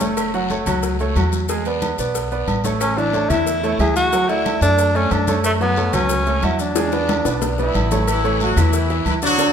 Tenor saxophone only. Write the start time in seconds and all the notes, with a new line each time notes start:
2.81 C#4
2.97 D4
3.29 E4
3.80 G#4
3.96 F#4
4.29 E4
4.62 D4
4.95 C#4
5.12 D4
5.45 A3
5.61 B3
5.94 C#4
6.44 E4
6.60 D4